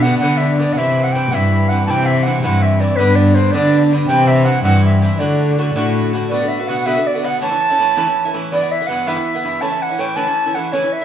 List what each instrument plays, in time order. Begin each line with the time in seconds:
Already playing: cello B2
0.02 bouzouki G2 D3 B3 D4, flute F#5
0.18 bouzouki G2, cello D3, flute F#5
0.23 bouzouki D3 B3 D4
0.37 flute E5
0.56 bouzouki G2 D3, flute D5
0.60 bouzouki B3 D4
0.73 cello C3, flute F#5
0.77 bouzouki G2 E3 C4 E4, flute E5
1.04 flute F#5
1.12 bouzouki G2 E3 C4, flute G5
1.16 bouzouki E4
1.31 bouzouki G2 E3 C4 E4, cello G2, flute E5 F#5
1.69 bouzouki G2 E3 C4 E4, flute F#5
1.86 bouzouki G2 E3 C4 E4, cello C3, flute A5
1.90 flute G5
2.06 flute E5
2.23 bouzouki G2 E3 C4, flute F#5
2.27 bouzouki E4
2.43 bouzouki G2 E3 C4 E4, cello G2, flute F#5
2.62 flute E5
2.80 bouzouki G2 E3 C4 E4, flute D5
2.96 cello G2, bouzouki G2 D3 B3 D4, flute B4
3.15 flute D5
3.34 bouzouki G2 D3 B3 D4, flute C5
3.52 bouzouki G2 D3 B3 D4, cello D3, flute D5
3.92 bouzouki G2 D3 B3 D4
4.07 bouzouki G2 E3 C4 E4, cello C3, flute G5
4.27 flute E5
4.45 bouzouki G2 E3 C4 E4, flute F#5
4.64 bouzouki G2 E3 C4 E4, cello G2, flute F#5
4.85 flute E5
5.01 bouzouki G2 E3 C4 E4, flute E5
5.19 bouzouki A2 D3 A3 F#4, cello D3, flute D5
5.58 bouzouki A2 D3 A3 F#4
5.75 cello A2, bouzouki A2 D3 A3 F#4
6.13 bouzouki A2 D3 A3 F#4
6.30 bouzouki B2 D3 B3 F#4, flute D5
6.40 bouzouki D3 B3 F#4
6.48 flute E5
6.59 bouzouki D3 B3 F#4
6.67 bouzouki B2 D3 B3 F#4, flute F#5
6.86 bouzouki B2 D3 B3 F#4, flute E5
6.95 bouzouki D3 B3 F#4
7.07 flute D5
7.14 bouzouki D3 B3 F#4
7.23 bouzouki B2 D3 B3 F#4, flute F#5
7.41 bouzouki A2 E3 C#4 E4, flute A5
7.51 bouzouki E3 C#4 E4
7.70 bouzouki E3 C#4 E4
7.79 bouzouki A2 E3 C#4 E4
7.97 bouzouki A2 E3 C#4 E4
8.06 bouzouki E3 C#4 E4
8.25 bouzouki E3 C#4 E4
8.34 bouzouki A2 E3 C#4 E4
8.51 bouzouki G2 E3 B3 E4, flute D5
8.61 bouzouki E3 B3 E4
8.71 flute E5
8.81 bouzouki E3 B3 E4
8.87 bouzouki G2 E3 B3 E4, flute F#5
9.07 bouzouki G2 E3 B3 E4, flute E5
9.16 bouzouki E3 B3 E4
9.34 bouzouki E3 B3 E4
9.44 bouzouki G2 E3 B3 E4
9.61 bouzouki A2 E3 C#4 E4, flute A5
9.71 bouzouki E3 C#4 E4
9.82 flute F#5
9.89 bouzouki E3 C#4 E4
9.98 bouzouki A2 E3 C#4 E4, flute G5
10.16 bouzouki A2 E3 C#4 E4, flute A5
10.26 bouzouki E3 C#4 E4
10.46 bouzouki E3 C#4 E4
10.55 bouzouki A2 E3 C#4 E4, flute F#5
10.72 bouzouki A2 E3 C#4 E4, flute C#5
10.83 bouzouki E3 C#4 E4
10.92 flute E5
11.01 bouzouki E4